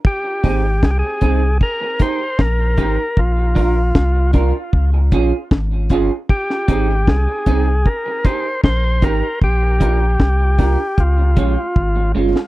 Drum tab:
HH |--o-p-x---x---x-|--o-p-x---x---x-|--x---x---x---x-|--x---o-p-x-----|
SD |----o-------o---|----o-------o---|-o--o-------o---|----o----------o|
BD |o-o-o-o-o-o-o-o-|o-o-o-o-o-o-o-o-|o-o-o-o-o-o-o-o-|o-o-o-o-o-o-o---|